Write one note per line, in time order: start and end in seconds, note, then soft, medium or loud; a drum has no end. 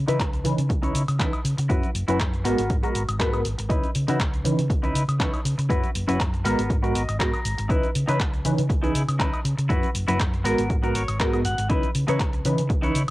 0.08 0.18 C#3 medium
0.08 0.17 E3 medium
0.08 0.17 C#4 medium
0.08 0.20 D#4 medium
0.08 0.17 D#4 medium
0.08 0.20 E4 medium
0.08 0.17 B4 loud
0.08 0.20 B4 loud
0.08 closed hi-hat medium
0.08 shaker soft
0.20 0.41 C#2 medium
0.20 kick loud
0.20 clap loud
0.20 closed hi-hat medium
0.20 shaker soft
0.33 muted clean electric guitar stroke soft
0.33 closed hi-hat soft
0.33 shaker soft
0.44 0.56 C#3 loud
0.44 0.61 E3 loud
0.44 0.61 C#4 medium
0.44 0.61 D#4 medium
0.44 0.61 B4 loud
0.44 open hi-hat loud
0.44 shaker medium
0.58 0.68 C#3 medium
0.58 closed hi-hat medium
0.58 shaker soft
0.69 0.91 C#2 medium
0.69 muted clean electric guitar stroke soft
0.69 kick loud
0.69 closed hi-hat medium
0.69 shaker soft
0.82 0.92 E3 medium
0.82 0.92 C#4 medium
0.82 1.01 D#4 loud
0.82 0.92 D#4 medium
0.82 1.02 E4 loud
0.82 0.92 B4 loud
0.82 1.02 C#5 loud
0.82 closed hi-hat soft
0.82 shaker soft
0.95 1.06 C#3 loud
0.95 open hi-hat loud
0.95 shaker medium
1.08 1.18 C#3 medium
1.08 closed hi-hat medium
1.08 high woodblock medium
1.08 shaker soft
1.19 1.31 C#2 medium
1.19 1.30 E3 medium
1.19 1.30 C#4 medium
1.19 1.39 D#4 medium
1.19 1.30 D#4 medium
1.19 1.39 E4 medium
1.19 1.30 B4 medium
1.19 1.40 B4 medium
1.19 kick loud
1.19 clap loud
1.19 closed hi-hat medium
1.19 shaker soft
1.33 closed hi-hat soft
1.33 high woodblock medium
1.33 shaker soft
1.45 1.56 C#3 medium
1.45 open hi-hat medium
1.45 shaker medium
1.58 1.68 C#3 medium
1.58 muted clean electric guitar stroke soft
1.58 closed hi-hat medium
1.58 shaker soft
1.69 1.81 F#2 loud
1.69 1.86 F#3 medium
1.69 1.86 C#4 medium
1.69 1.89 E4 loud
1.69 1.86 E4 medium
1.69 1.89 F#4 loud
1.69 1.86 B4 medium
1.69 1.90 B4 loud
1.69 kick loud
1.69 closed hi-hat medium
1.69 shaker soft
1.83 closed hi-hat soft
1.83 shaker soft
1.95 2.06 F#1 medium
1.95 open hi-hat medium
1.95 shaker medium
2.08 2.18 F#1 loud
2.08 2.17 F#3 medium
2.08 2.17 C#4 medium
2.08 2.20 E4 medium
2.08 2.17 E4 medium
2.08 2.20 F#4 medium
2.08 2.18 B4 loud
2.08 2.20 B4 loud
2.08 closed hi-hat medium
2.08 shaker soft
2.20 kick loud
2.20 clap loud
2.20 closed hi-hat medium
2.20 shaker soft
2.33 muted clean electric guitar stroke soft
2.33 closed hi-hat soft
2.33 shaker soft
2.44 2.56 G#1 loud
2.44 2.61 G#3 loud
2.44 2.75 B3 medium
2.44 2.61 B3 medium
2.44 2.61 F#4 medium
2.44 2.75 F#4 medium
2.44 2.61 A#4 loud
2.44 2.76 A#4 loud
2.44 clap soft
2.44 open hi-hat loud
2.44 shaker medium
2.58 2.68 G#1 medium
2.58 closed hi-hat medium
2.58 shaker soft
2.70 kick loud
2.70 closed hi-hat medium
2.70 shaker soft
2.83 2.92 G#3 medium
2.83 3.01 B3 loud
2.83 2.92 B3 medium
2.83 2.92 F#4 medium
2.83 3.02 F#4 loud
2.83 2.92 A#4 loud
2.83 3.02 A#4 loud
2.83 closed hi-hat soft
2.83 shaker soft
2.95 3.06 G#1 medium
2.95 open hi-hat loud
2.95 shaker medium
3.08 3.21 G#1 medium
3.08 closed hi-hat medium
3.08 high woodblock medium
3.08 shaker soft
3.19 3.41 G#2 medium
3.19 3.30 G#3 medium
3.19 3.39 B3 medium
3.19 3.30 B3 medium
3.19 3.30 F#4 medium
3.19 3.39 F#4 medium
3.19 3.30 A#4 loud
3.19 3.40 B4 loud
3.19 kick loud
3.19 clap loud
3.19 closed hi-hat medium
3.19 shaker soft
3.33 3.42 G#3 medium
3.33 3.42 B3 medium
3.33 3.42 F#4 medium
3.33 3.42 A#4 medium
3.33 closed hi-hat soft
3.33 high woodblock medium
3.33 shaker soft
3.45 3.56 G#1 medium
3.45 open hi-hat loud
3.45 shaker medium
3.58 3.68 G#1 medium
3.58 muted clean electric guitar stroke soft
3.58 closed hi-hat medium
3.58 shaker soft
3.69 3.81 C#2 loud
3.69 3.85 E3 medium
3.69 3.86 C#4 medium
3.69 3.89 D#4 loud
3.69 3.86 D#4 medium
3.69 3.89 E4 loud
3.69 3.86 B4 medium
3.69 3.90 B4 loud
3.69 kick loud
3.69 closed hi-hat medium
3.69 shaker soft
3.84 closed hi-hat soft
3.84 shaker soft
3.95 4.07 C#3 medium
3.95 open hi-hat loud
3.95 shaker medium
4.08 4.18 C#3 medium
4.08 4.17 E3 medium
4.08 4.17 C#4 medium
4.08 4.20 D#4 medium
4.08 4.17 D#4 medium
4.08 4.20 E4 medium
4.08 4.21 F#4 loud
4.08 4.17 B4 loud
4.08 closed hi-hat medium
4.08 shaker soft
4.20 4.41 C#2 medium
4.20 kick loud
4.20 clap loud
4.20 closed hi-hat medium
4.20 shaker soft
4.33 muted clean electric guitar stroke soft
4.33 closed hi-hat soft
4.33 shaker soft
4.44 4.56 C#3 loud
4.44 4.61 E3 loud
4.44 4.61 C#4 medium
4.44 4.61 D#4 medium
4.44 4.61 B4 loud
4.44 open hi-hat loud
4.44 shaker medium
4.58 4.68 C#3 medium
4.58 closed hi-hat medium
4.58 shaker soft
4.70 4.91 C#2 medium
4.70 muted clean electric guitar stroke soft
4.70 kick loud
4.70 closed hi-hat medium
4.70 shaker soft
4.83 4.92 E3 medium
4.83 4.92 C#4 medium
4.83 4.92 D#4 medium
4.83 5.02 D#4 loud
4.83 5.02 E4 loud
4.83 4.92 B4 loud
4.83 5.02 B4 loud
4.83 closed hi-hat soft
4.83 shaker soft
4.95 5.06 C#3 medium
4.95 open hi-hat loud
4.95 shaker medium
5.08 5.18 C#3 medium
5.08 closed hi-hat medium
5.08 high woodblock medium
5.08 shaker soft
5.19 5.31 C#2 medium
5.19 5.30 E3 medium
5.19 5.30 C#4 medium
5.19 5.39 D#4 medium
5.19 5.30 D#4 medium
5.19 5.39 E4 medium
5.19 5.30 B4 medium
5.19 5.40 C#5 medium
5.19 kick loud
5.19 clap loud
5.19 closed hi-hat medium
5.19 shaker soft
5.34 closed hi-hat soft
5.34 high woodblock medium
5.34 shaker soft
5.45 5.56 C#3 loud
5.45 open hi-hat loud
5.45 shaker medium
5.58 5.68 C#3 medium
5.58 muted clean electric guitar stroke soft
5.58 closed hi-hat medium
5.58 shaker soft
5.69 5.81 F#2 loud
5.69 5.85 F#3 medium
5.69 5.86 C#4 medium
5.69 5.86 E4 medium
5.69 5.89 E4 loud
5.69 5.89 F#4 loud
5.69 5.86 B4 medium
5.69 5.90 B4 loud
5.69 kick loud
5.69 closed hi-hat medium
5.69 shaker soft
5.84 closed hi-hat soft
5.84 shaker soft
5.95 6.06 F#1 loud
5.95 open hi-hat loud
5.95 shaker medium
6.07 6.18 F#1 loud
6.07 6.17 F#3 medium
6.07 6.17 C#4 medium
6.07 6.20 E4 medium
6.07 6.17 E4 medium
6.07 6.20 F#4 medium
6.07 6.17 B4 loud
6.07 6.21 B4 loud
6.07 closed hi-hat medium
6.07 shaker soft
6.20 kick loud
6.20 clap loud
6.20 closed hi-hat medium
6.20 shaker soft
6.33 muted clean electric guitar stroke soft
6.33 closed hi-hat soft
6.33 shaker soft
6.45 6.56 G#1 loud
6.45 6.61 G#3 medium
6.45 6.75 B3 medium
6.45 6.61 B3 medium
6.45 6.75 F#4 medium
6.45 6.61 F#4 medium
6.45 6.61 A#4 loud
6.45 6.76 A#4 loud
6.45 clap soft
6.45 open hi-hat loud
6.45 shaker medium
6.58 6.68 G#1 medium
6.58 closed hi-hat medium
6.58 shaker soft
6.70 kick loud
6.70 closed hi-hat soft
6.70 shaker soft
6.82 6.92 G#3 medium
6.82 7.01 B3 loud
6.82 6.92 B3 medium
6.82 6.92 F#4 medium
6.82 7.02 F#4 loud
6.82 6.92 A#4 loud
6.82 7.02 A#4 loud
6.82 closed hi-hat soft
6.82 shaker soft
6.95 7.06 G#1 medium
6.95 7.18 D#5 medium
6.95 open hi-hat loud
6.95 shaker medium
7.09 7.18 G#1 medium
7.09 closed hi-hat medium
7.09 high woodblock medium
7.09 shaker soft
7.19 7.31 G#2 medium
7.19 7.30 G#3 medium
7.19 7.39 B3 medium
7.19 7.30 B3 medium
7.19 7.30 F#4 medium
7.19 7.39 F#4 medium
7.19 7.30 A#4 medium
7.19 7.40 A#4 loud
7.19 7.67 A#5 medium
7.19 kick loud
7.19 clap loud
7.19 closed hi-hat medium
7.19 shaker soft
7.34 closed hi-hat soft
7.34 high woodblock medium
7.34 shaker soft
7.45 7.56 G#1 loud
7.45 open hi-hat loud
7.45 shaker medium
7.58 7.68 G#1 medium
7.58 muted clean electric guitar stroke soft
7.58 closed hi-hat medium
7.58 shaker soft
7.69 7.81 C#2 loud
7.69 7.86 E3 medium
7.69 7.86 C#4 medium
7.69 7.89 D#4 loud
7.69 7.86 D#4 medium
7.69 7.89 E4 loud
7.69 7.86 B4 loud
7.69 7.90 B4 loud
7.69 kick loud
7.69 closed hi-hat soft
7.69 shaker soft
7.84 closed hi-hat soft
7.84 shaker soft
7.95 8.07 C#3 medium
7.95 open hi-hat loud
7.95 shaker medium
8.08 8.18 C#3 medium
8.08 8.17 E3 medium
8.08 8.17 C#4 medium
8.08 8.20 D#4 medium
8.08 8.17 D#4 medium
8.08 8.20 E4 medium
8.08 8.20 B4 loud
8.08 8.18 B4 loud
8.08 closed hi-hat medium
8.08 shaker soft
8.20 8.41 C#2 medium
8.20 kick loud
8.20 clap loud
8.20 closed hi-hat soft
8.20 shaker soft
8.32 muted clean electric guitar stroke soft
8.32 closed hi-hat soft
8.32 shaker soft
8.45 8.56 C#3 loud
8.45 8.61 E3 loud
8.45 8.61 C#4 medium
8.45 8.61 D#4 medium
8.45 8.61 B4 loud
8.45 open hi-hat loud
8.45 shaker medium
8.58 8.68 C#3 medium
8.58 closed hi-hat soft
8.58 shaker soft
8.69 8.91 C#2 medium
8.69 muted clean electric guitar stroke soft
8.69 kick loud
8.69 closed hi-hat soft
8.69 shaker soft
8.83 8.92 E3 medium
8.83 8.92 C#4 medium
8.83 9.01 D#4 loud
8.83 8.92 D#4 medium
8.83 9.02 E4 loud
8.83 9.02 G#4 loud
8.83 8.92 B4 medium
8.83 closed hi-hat soft
8.83 shaker soft
8.95 9.06 C#3 loud
8.95 open hi-hat loud
8.95 shaker medium
9.08 9.18 C#3 medium
9.08 closed hi-hat soft
9.08 high woodblock medium
9.08 shaker soft
9.19 9.31 C#2 medium
9.19 9.30 E3 medium
9.19 9.30 C#4 medium
9.19 9.39 D#4 medium
9.19 9.30 D#4 medium
9.19 9.39 E4 medium
9.19 9.30 B4 medium
9.19 9.39 B4 loud
9.19 kick loud
9.19 clap loud
9.19 closed hi-hat soft
9.19 shaker soft
9.34 closed hi-hat soft
9.34 high woodblock medium
9.34 shaker soft
9.45 9.56 C#3 loud
9.45 open hi-hat loud
9.45 shaker medium
9.58 9.68 C#3 medium
9.58 muted clean electric guitar stroke soft
9.58 closed hi-hat medium
9.58 shaker soft
9.69 9.81 F#2 loud
9.69 9.86 F#3 medium
9.69 9.86 C#4 medium
9.69 9.89 E4 loud
9.69 9.86 E4 medium
9.69 9.89 F#4 loud
9.69 9.86 B4 medium
9.69 9.90 B4 loud
9.69 kick loud
9.69 closed hi-hat soft
9.69 shaker soft
9.83 closed hi-hat soft
9.83 shaker soft
9.95 10.06 F#1 medium
9.95 open hi-hat loud
9.95 shaker medium
10.08 10.18 F#1 loud
10.08 10.17 F#3 medium
10.08 10.17 C#4 medium
10.08 10.20 E4 medium
10.08 10.17 E4 medium
10.08 10.20 F#4 medium
10.08 10.17 B4 loud
10.08 10.20 B4 medium
10.08 closed hi-hat medium
10.08 shaker soft
10.20 kick loud
10.20 clap loud
10.20 closed hi-hat soft
10.20 shaker soft
10.33 muted clean electric guitar stroke soft
10.33 closed hi-hat soft
10.33 shaker soft
10.44 10.56 G#1 loud
10.44 10.61 G#3 loud
10.44 10.75 B3 medium
10.44 10.61 B3 medium
10.44 10.61 F#4 medium
10.44 10.75 F#4 medium
10.44 10.61 A#4 loud
10.44 10.76 A#4 loud
10.44 clap soft
10.44 open hi-hat loud
10.44 shaker medium
10.58 10.68 G#1 medium
10.58 closed hi-hat soft
10.58 shaker soft
10.70 10.91 G#2 medium
10.70 kick loud
10.70 closed hi-hat soft
10.70 shaker soft
10.82 10.92 G#3 medium
10.82 11.01 B3 loud
10.82 10.92 B3 medium
10.82 11.02 F#4 loud
10.82 10.92 F#4 medium
10.82 10.92 A#4 loud
10.82 11.02 A#4 loud
10.82 closed hi-hat soft
10.82 shaker soft
10.95 11.06 G#1 medium
10.95 11.18 C#5 medium
10.95 open hi-hat loud
10.95 shaker medium
11.08 11.18 G#1 medium
11.08 closed hi-hat medium
11.08 high woodblock medium
11.08 shaker soft
11.19 11.30 G#3 medium
11.19 11.39 B3 medium
11.19 11.30 B3 medium
11.19 11.39 F#4 medium
11.19 11.30 F#4 medium
11.19 11.31 A#4 loud
11.19 11.40 A#4 medium
11.19 11.43 D#5 medium
11.19 kick loud
11.19 clap loud
11.19 closed hi-hat soft
11.19 shaker soft
11.33 11.42 G#3 medium
11.33 11.42 B3 medium
11.33 11.42 F#4 medium
11.33 11.43 A#4 loud
11.33 closed hi-hat soft
11.33 high woodblock medium
11.33 shaker soft
11.45 11.56 G#1 medium
11.45 11.68 F#5 medium
11.45 open hi-hat loud
11.45 shaker medium
11.58 11.68 G#1 medium
11.58 muted clean electric guitar stroke soft
11.58 closed hi-hat soft
11.58 shaker soft
11.69 11.81 C#2 medium
11.69 11.86 E3 medium
11.69 11.86 C#4 medium
11.69 11.89 D#4 loud
11.69 11.86 D#4 medium
11.69 11.89 E4 loud
11.69 11.86 B4 medium
11.69 11.90 B4 loud
11.69 kick loud
11.69 closed hi-hat soft
11.69 shaker soft
11.83 closed hi-hat soft
11.83 shaker soft
11.95 12.06 C#3 loud
11.95 open hi-hat loud
11.95 shaker medium
12.08 12.18 C#3 medium
12.08 12.17 E3 medium
12.08 12.17 C#4 medium
12.08 12.20 D#4 medium
12.08 12.17 D#4 medium
12.08 12.20 E4 medium
12.08 12.18 B4 loud
12.08 12.20 C#5 loud
12.08 closed hi-hat soft
12.08 shaker soft
12.20 12.41 C#2 medium
12.20 kick loud
12.20 clap loud
12.20 closed hi-hat medium
12.20 shaker soft
12.33 muted clean electric guitar stroke soft
12.33 closed hi-hat soft
12.33 shaker soft
12.45 12.56 C#3 loud
12.45 12.61 E3 loud
12.45 12.61 C#4 medium
12.45 12.61 D#4 medium
12.45 12.61 B4 loud
12.45 open hi-hat loud
12.45 shaker medium
12.58 12.68 C#3 medium
12.58 closed hi-hat soft
12.58 shaker soft
12.69 12.91 C#2 medium
12.69 muted clean electric guitar stroke soft
12.69 kick loud
12.69 closed hi-hat medium
12.69 shaker soft
12.82 12.92 E3 medium
12.82 12.92 C#4 medium
12.82 13.01 D#4 loud
12.82 12.92 D#4 medium
12.82 13.02 E4 loud
12.82 12.92 B4 loud
12.82 13.02 C#5 loud
12.82 closed hi-hat soft
12.82 shaker soft
12.95 13.06 C#3 loud
12.95 open hi-hat loud
12.95 shaker medium